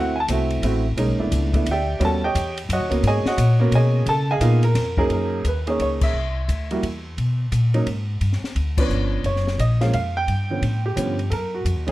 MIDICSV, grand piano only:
0, 0, Header, 1, 2, 480
1, 0, Start_track
1, 0, Tempo, 344432
1, 1359, Time_signature, 3, 2, 24, 8
1, 16606, End_track
2, 0, Start_track
2, 0, Title_t, "Grand piano"
2, 0, Program_c, 0, 0
2, 0, Note_on_c, 0, 57, 76
2, 0, Note_on_c, 0, 60, 69
2, 0, Note_on_c, 0, 64, 69
2, 0, Note_on_c, 0, 66, 83
2, 0, Note_on_c, 0, 78, 92
2, 193, Note_off_c, 0, 57, 0
2, 195, Note_off_c, 0, 60, 0
2, 198, Note_off_c, 0, 64, 0
2, 201, Note_off_c, 0, 66, 0
2, 218, Note_on_c, 0, 80, 77
2, 236, Note_off_c, 0, 80, 0
2, 252, Note_off_c, 0, 78, 0
2, 281, Note_on_c, 0, 81, 99
2, 368, Note_off_c, 0, 81, 0
2, 410, Note_on_c, 0, 57, 73
2, 412, Note_on_c, 0, 60, 66
2, 418, Note_on_c, 0, 64, 70
2, 418, Note_on_c, 0, 66, 77
2, 867, Note_off_c, 0, 57, 0
2, 868, Note_off_c, 0, 60, 0
2, 871, Note_off_c, 0, 64, 0
2, 871, Note_off_c, 0, 66, 0
2, 891, Note_on_c, 0, 57, 76
2, 894, Note_on_c, 0, 60, 67
2, 897, Note_on_c, 0, 64, 71
2, 904, Note_on_c, 0, 66, 81
2, 1161, Note_off_c, 0, 57, 0
2, 1163, Note_off_c, 0, 60, 0
2, 1164, Note_off_c, 0, 64, 0
2, 1168, Note_off_c, 0, 66, 0
2, 1354, Note_on_c, 0, 56, 71
2, 1358, Note_on_c, 0, 61, 63
2, 1360, Note_on_c, 0, 58, 59
2, 1363, Note_on_c, 0, 63, 77
2, 1633, Note_off_c, 0, 56, 0
2, 1634, Note_off_c, 0, 61, 0
2, 1635, Note_off_c, 0, 58, 0
2, 1637, Note_off_c, 0, 63, 0
2, 1659, Note_on_c, 0, 57, 60
2, 1665, Note_on_c, 0, 59, 53
2, 1668, Note_on_c, 0, 62, 59
2, 1673, Note_on_c, 0, 64, 69
2, 2080, Note_off_c, 0, 57, 0
2, 2083, Note_off_c, 0, 59, 0
2, 2085, Note_off_c, 0, 62, 0
2, 2087, Note_off_c, 0, 64, 0
2, 2136, Note_on_c, 0, 57, 67
2, 2140, Note_on_c, 0, 59, 63
2, 2142, Note_on_c, 0, 62, 55
2, 2146, Note_on_c, 0, 64, 74
2, 2296, Note_off_c, 0, 57, 0
2, 2297, Note_off_c, 0, 59, 0
2, 2299, Note_off_c, 0, 62, 0
2, 2301, Note_off_c, 0, 64, 0
2, 2387, Note_on_c, 0, 76, 78
2, 2387, Note_on_c, 0, 79, 89
2, 2389, Note_on_c, 0, 67, 77
2, 2393, Note_on_c, 0, 74, 73
2, 2779, Note_on_c, 0, 59, 68
2, 2785, Note_on_c, 0, 55, 75
2, 2788, Note_on_c, 0, 61, 74
2, 2793, Note_on_c, 0, 66, 84
2, 2800, Note_off_c, 0, 76, 0
2, 2800, Note_off_c, 0, 79, 0
2, 2801, Note_off_c, 0, 67, 0
2, 2803, Note_off_c, 0, 74, 0
2, 2853, Note_on_c, 0, 81, 102
2, 2855, Note_on_c, 0, 69, 83
2, 3064, Note_off_c, 0, 59, 0
2, 3066, Note_off_c, 0, 55, 0
2, 3068, Note_off_c, 0, 61, 0
2, 3071, Note_off_c, 0, 66, 0
2, 3123, Note_off_c, 0, 81, 0
2, 3124, Note_off_c, 0, 69, 0
2, 3125, Note_on_c, 0, 79, 97
2, 3133, Note_on_c, 0, 73, 76
2, 3133, Note_on_c, 0, 75, 75
2, 3136, Note_on_c, 0, 67, 77
2, 3560, Note_off_c, 0, 79, 0
2, 3564, Note_off_c, 0, 73, 0
2, 3564, Note_off_c, 0, 75, 0
2, 3566, Note_off_c, 0, 67, 0
2, 3801, Note_on_c, 0, 78, 89
2, 3804, Note_on_c, 0, 66, 72
2, 3806, Note_on_c, 0, 73, 76
2, 3806, Note_on_c, 0, 75, 70
2, 4028, Note_off_c, 0, 66, 0
2, 4036, Note_on_c, 0, 58, 73
2, 4045, Note_on_c, 0, 59, 65
2, 4046, Note_on_c, 0, 61, 63
2, 4049, Note_on_c, 0, 66, 73
2, 4224, Note_off_c, 0, 78, 0
2, 4227, Note_off_c, 0, 73, 0
2, 4227, Note_off_c, 0, 75, 0
2, 4284, Note_on_c, 0, 80, 107
2, 4285, Note_on_c, 0, 68, 87
2, 4288, Note_on_c, 0, 73, 90
2, 4291, Note_on_c, 0, 75, 93
2, 4544, Note_off_c, 0, 75, 0
2, 4551, Note_off_c, 0, 66, 0
2, 4557, Note_off_c, 0, 68, 0
2, 4557, Note_off_c, 0, 73, 0
2, 4557, Note_off_c, 0, 80, 0
2, 4563, Note_on_c, 0, 78, 100
2, 4565, Note_on_c, 0, 75, 82
2, 4572, Note_on_c, 0, 66, 82
2, 4578, Note_on_c, 0, 73, 82
2, 4665, Note_off_c, 0, 58, 0
2, 4670, Note_off_c, 0, 59, 0
2, 4670, Note_off_c, 0, 61, 0
2, 4998, Note_off_c, 0, 78, 0
2, 4999, Note_off_c, 0, 75, 0
2, 5000, Note_off_c, 0, 66, 0
2, 5006, Note_off_c, 0, 73, 0
2, 5009, Note_on_c, 0, 58, 88
2, 5011, Note_on_c, 0, 59, 79
2, 5014, Note_on_c, 0, 61, 73
2, 5021, Note_on_c, 0, 66, 92
2, 5231, Note_on_c, 0, 80, 100
2, 5233, Note_on_c, 0, 68, 78
2, 5236, Note_on_c, 0, 73, 81
2, 5237, Note_on_c, 0, 75, 85
2, 5631, Note_off_c, 0, 58, 0
2, 5632, Note_off_c, 0, 59, 0
2, 5633, Note_off_c, 0, 61, 0
2, 5637, Note_off_c, 0, 66, 0
2, 5658, Note_off_c, 0, 80, 0
2, 5659, Note_off_c, 0, 68, 0
2, 5661, Note_off_c, 0, 73, 0
2, 5661, Note_off_c, 0, 75, 0
2, 5697, Note_on_c, 0, 81, 115
2, 5698, Note_on_c, 0, 69, 97
2, 5982, Note_off_c, 0, 69, 0
2, 5982, Note_off_c, 0, 81, 0
2, 6004, Note_on_c, 0, 80, 105
2, 6013, Note_on_c, 0, 75, 81
2, 6015, Note_on_c, 0, 77, 81
2, 6018, Note_on_c, 0, 68, 84
2, 6142, Note_on_c, 0, 59, 78
2, 6144, Note_on_c, 0, 58, 89
2, 6153, Note_on_c, 0, 63, 78
2, 6158, Note_on_c, 0, 65, 95
2, 6422, Note_off_c, 0, 59, 0
2, 6423, Note_off_c, 0, 58, 0
2, 6427, Note_off_c, 0, 63, 0
2, 6430, Note_off_c, 0, 65, 0
2, 6437, Note_off_c, 0, 80, 0
2, 6442, Note_off_c, 0, 75, 0
2, 6443, Note_off_c, 0, 77, 0
2, 6445, Note_off_c, 0, 68, 0
2, 6467, Note_on_c, 0, 70, 94
2, 6908, Note_off_c, 0, 70, 0
2, 6936, Note_on_c, 0, 70, 93
2, 6938, Note_on_c, 0, 42, 77
2, 6941, Note_on_c, 0, 61, 73
2, 6943, Note_on_c, 0, 63, 78
2, 6944, Note_on_c, 0, 58, 75
2, 6945, Note_on_c, 0, 68, 90
2, 7006, Note_off_c, 0, 70, 0
2, 7143, Note_on_c, 0, 70, 78
2, 7555, Note_off_c, 0, 42, 0
2, 7557, Note_off_c, 0, 61, 0
2, 7558, Note_off_c, 0, 58, 0
2, 7558, Note_off_c, 0, 63, 0
2, 7559, Note_off_c, 0, 68, 0
2, 7620, Note_off_c, 0, 70, 0
2, 7635, Note_on_c, 0, 71, 73
2, 7898, Note_on_c, 0, 58, 69
2, 7900, Note_off_c, 0, 71, 0
2, 7906, Note_on_c, 0, 63, 60
2, 7908, Note_on_c, 0, 68, 69
2, 7912, Note_on_c, 0, 61, 60
2, 7947, Note_on_c, 0, 73, 79
2, 8091, Note_off_c, 0, 73, 0
2, 8111, Note_on_c, 0, 73, 94
2, 8181, Note_off_c, 0, 73, 0
2, 8408, Note_on_c, 0, 76, 94
2, 8516, Note_off_c, 0, 58, 0
2, 8520, Note_off_c, 0, 63, 0
2, 8521, Note_off_c, 0, 68, 0
2, 8523, Note_off_c, 0, 61, 0
2, 9298, Note_off_c, 0, 76, 0
2, 9349, Note_on_c, 0, 58, 67
2, 9351, Note_on_c, 0, 55, 70
2, 9354, Note_on_c, 0, 64, 64
2, 9355, Note_on_c, 0, 66, 76
2, 9500, Note_off_c, 0, 58, 0
2, 9501, Note_off_c, 0, 55, 0
2, 9502, Note_off_c, 0, 64, 0
2, 9503, Note_off_c, 0, 66, 0
2, 10785, Note_on_c, 0, 58, 67
2, 10788, Note_on_c, 0, 54, 72
2, 10789, Note_on_c, 0, 63, 75
2, 10792, Note_on_c, 0, 61, 62
2, 10939, Note_off_c, 0, 58, 0
2, 10941, Note_off_c, 0, 54, 0
2, 10941, Note_off_c, 0, 63, 0
2, 10943, Note_off_c, 0, 61, 0
2, 12234, Note_on_c, 0, 53, 62
2, 12239, Note_on_c, 0, 62, 70
2, 12241, Note_on_c, 0, 59, 59
2, 12241, Note_on_c, 0, 61, 64
2, 12264, Note_on_c, 0, 71, 83
2, 12848, Note_off_c, 0, 53, 0
2, 12851, Note_off_c, 0, 59, 0
2, 12851, Note_off_c, 0, 61, 0
2, 12851, Note_off_c, 0, 62, 0
2, 12853, Note_off_c, 0, 71, 0
2, 12902, Note_on_c, 0, 73, 87
2, 13380, Note_on_c, 0, 75, 86
2, 13385, Note_off_c, 0, 73, 0
2, 13656, Note_off_c, 0, 75, 0
2, 13668, Note_on_c, 0, 56, 59
2, 13671, Note_on_c, 0, 53, 69
2, 13671, Note_on_c, 0, 58, 57
2, 13673, Note_on_c, 0, 77, 87
2, 13676, Note_on_c, 0, 61, 73
2, 13823, Note_off_c, 0, 56, 0
2, 13824, Note_off_c, 0, 53, 0
2, 13824, Note_off_c, 0, 58, 0
2, 13827, Note_off_c, 0, 61, 0
2, 13830, Note_off_c, 0, 77, 0
2, 13855, Note_on_c, 0, 77, 97
2, 14133, Note_off_c, 0, 77, 0
2, 14172, Note_on_c, 0, 79, 113
2, 14637, Note_on_c, 0, 50, 58
2, 14638, Note_on_c, 0, 59, 51
2, 14643, Note_on_c, 0, 53, 51
2, 14649, Note_on_c, 0, 61, 57
2, 14788, Note_off_c, 0, 50, 0
2, 14788, Note_off_c, 0, 59, 0
2, 14791, Note_off_c, 0, 53, 0
2, 14793, Note_off_c, 0, 61, 0
2, 15064, Note_off_c, 0, 79, 0
2, 15129, Note_on_c, 0, 67, 88
2, 15270, Note_on_c, 0, 53, 55
2, 15271, Note_on_c, 0, 50, 57
2, 15275, Note_on_c, 0, 59, 57
2, 15281, Note_on_c, 0, 61, 68
2, 15552, Note_off_c, 0, 50, 0
2, 15552, Note_off_c, 0, 53, 0
2, 15554, Note_off_c, 0, 59, 0
2, 15557, Note_off_c, 0, 61, 0
2, 15687, Note_off_c, 0, 67, 0
2, 15751, Note_on_c, 0, 69, 67
2, 15779, Note_off_c, 0, 69, 0
2, 15787, Note_on_c, 0, 70, 84
2, 16089, Note_on_c, 0, 66, 78
2, 16090, Note_off_c, 0, 70, 0
2, 16526, Note_off_c, 0, 66, 0
2, 16537, Note_on_c, 0, 56, 65
2, 16540, Note_on_c, 0, 51, 68
2, 16545, Note_on_c, 0, 58, 65
2, 16552, Note_on_c, 0, 61, 73
2, 16606, Note_off_c, 0, 51, 0
2, 16606, Note_off_c, 0, 56, 0
2, 16606, Note_off_c, 0, 58, 0
2, 16606, Note_off_c, 0, 61, 0
2, 16606, End_track
0, 0, End_of_file